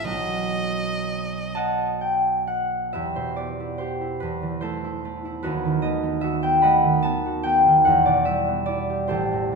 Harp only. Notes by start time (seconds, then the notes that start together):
Already playing: A1 C4 F4 A4
0.04 B1 B3 F#4
1.55 D#5 F#5 A5
2.01 G5
2.47 F#5
2.93 E2 G4 B4 E5
3.16 B2 C5
3.36 B3 D5
3.60 E4
3.78 G4 C5
4.01 E4
4.20 E2 B4
4.42 E3
4.61 A3 E4 A4 C5
4.84 E4
5.05 A3
5.25 E4
5.43 D#2 D#4 F#4 B4
5.65 D#3
5.82 A3 D#5
6.04 B3
6.21 F#4 E5
6.43 B3 G5
6.62 A3 D#5 F#5 B5
6.85 D#3
7.02 B3 A5
7.26 F#4
7.43 B3 G5
7.66 D#3
7.85 E2 F#5
8.06 B2 D5
8.25 G3 E5
8.48 B3
8.66 E4 D5
8.90 G4
9.08 A1 G4 A4 C5
9.32 E2